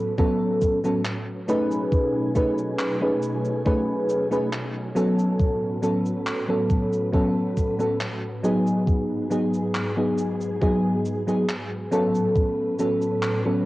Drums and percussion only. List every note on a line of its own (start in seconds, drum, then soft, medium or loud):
0.18 kick loud
0.18 cabasa soft
0.62 kick medium
0.62 cabasa medium
0.84 cabasa soft
1.05 clap loud
1.05 cabasa soft
1.49 cabasa medium
1.71 cabasa soft
1.92 kick loud
1.92 cabasa soft
2.35 kick medium
2.35 cabasa medium
2.58 cabasa soft
2.79 clap loud
2.79 cabasa soft
3.22 cabasa medium
3.45 cabasa soft
3.66 kick loud
3.66 cabasa soft
4.09 cabasa medium
4.32 cabasa soft
4.53 clap loud
4.53 cabasa soft
4.96 cabasa medium
5.19 cabasa soft
5.40 kick loud
5.40 cabasa soft
5.83 cabasa medium
6.06 cabasa soft
6.27 clap loud
6.27 cabasa soft
6.70 kick loud
6.70 cabasa medium
6.93 cabasa soft
7.14 kick loud
7.14 cabasa soft
7.57 kick medium
7.57 cabasa medium
7.80 cabasa soft
8.01 clap loud
8.01 cabasa soft
8.44 cabasa medium
8.67 cabasa soft
8.88 kick loud
8.88 cabasa soft
9.31 cabasa medium
9.54 cabasa soft
9.75 clap loud
9.75 cabasa soft
10.18 cabasa medium
10.41 cabasa soft
10.62 kick loud
10.62 cabasa soft
11.05 cabasa medium
11.28 cabasa soft
11.49 clap loud
11.49 cabasa soft
11.92 cabasa medium
12.15 cabasa soft
12.36 kick loud
12.36 cabasa soft
12.79 cabasa medium
13.02 cabasa soft
13.22 clap loud
13.22 cabasa soft